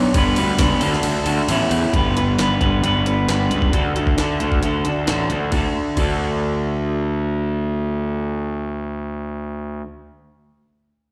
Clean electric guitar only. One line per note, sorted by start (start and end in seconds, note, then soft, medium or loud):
0.00 0.13 B3 medium
0.00 0.14 D4 medium
0.00 0.14 F#4 medium
0.00 0.15 C#5 medium
0.14 0.56 G3 medium
0.14 0.37 B3 loud
0.14 0.39 D4 loud
0.14 0.35 B4 loud
0.36 0.59 B3 medium
0.36 0.58 D4 medium
0.36 0.60 B4 medium
0.58 0.80 G3 loud
0.58 0.81 B3 loud
0.58 0.80 D4 loud
0.62 0.80 B4 loud
0.80 1.48 D3 medium
0.80 1.27 D4 medium
0.80 1.25 F#4 medium
0.80 1.23 A4 loud
1.24 1.48 D4 medium
1.24 1.47 F#4 medium
1.24 1.46 A4 medium
1.47 1.92 A2 medium
1.47 1.92 A3 medium
1.47 1.93 B3 loud
1.47 1.93 C#4 medium
1.47 1.93 E4 loud
1.93 2.37 G3 medium
1.93 2.16 B3 medium
1.93 2.18 D4 medium
1.93 2.14 B4 medium
2.15 2.39 B3 medium
2.15 2.39 D4 medium
2.15 2.40 B4 medium
2.38 2.63 G3 medium
2.38 2.61 B3 medium
2.38 2.63 D4 medium
2.38 2.60 B4 medium
2.61 2.81 G3 medium
2.61 2.83 B3 medium
2.61 2.83 D4 medium
2.61 2.84 B4 medium
2.82 3.26 G3 medium
2.82 3.06 B3 medium
2.82 3.09 D4 medium
2.82 3.04 B4 medium
3.06 3.29 B3 medium
3.06 3.28 D4 medium
3.06 3.29 B4 medium
3.27 3.71 G3 medium
3.27 3.51 B3 medium
3.27 3.53 D4 medium
3.27 3.49 B4 medium
3.50 3.72 B3 medium
3.50 3.73 D4 medium
3.50 3.71 B4 medium
3.72 4.16 D3 medium
3.72 3.97 D4 medium
3.72 3.96 F#4 medium
3.72 3.94 A4 medium
3.95 4.18 D4 soft
3.95 4.19 F#4 medium
3.95 4.20 A4 medium
4.18 4.42 D3 medium
4.18 4.41 D4 medium
4.18 4.40 F#4 medium
4.18 4.39 A4 medium
4.40 4.61 D3 medium
4.40 4.62 D4 medium
4.40 4.63 F#4 medium
4.40 4.64 A4 medium
4.62 5.05 D3 medium
4.62 4.87 D4 medium
4.62 4.85 F#4 medium
4.62 4.83 A4 medium
4.84 5.07 D4 soft
4.84 5.07 F#4 soft
4.84 5.08 A4 medium
5.06 5.50 D3 medium
5.06 5.31 D4 medium
5.06 5.29 F#4 medium
5.06 5.27 A4 medium
5.29 5.52 D4 soft
5.29 5.51 F#4 soft
5.29 5.50 A4 soft
5.51 5.96 D3 medium
5.51 5.97 D4 medium
5.51 5.98 F#4 medium
5.55 6.00 A4 medium
5.96 9.84 D3 medium
5.96 9.86 D4 medium
5.96 9.87 F#4 medium
5.96 9.88 A4 medium